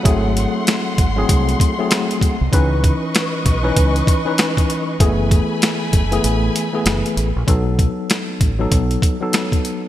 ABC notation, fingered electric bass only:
X:1
M:4/4
L:1/16
Q:"Swing 16ths" 1/4=97
K:Bmix
V:1 name="Fingered electric bass" clef=bass
G,,,3 z3 G,,,2 ^B,,,2 z4 z B,,, | C,,3 z3 B,,,2 C,,2 z6 | F,,,3 z3 F,,,2 A,,,2 z2 F,,, z A,,, ^A,,, | B,,,3 z3 A,,,2 B,,,2 z6 |]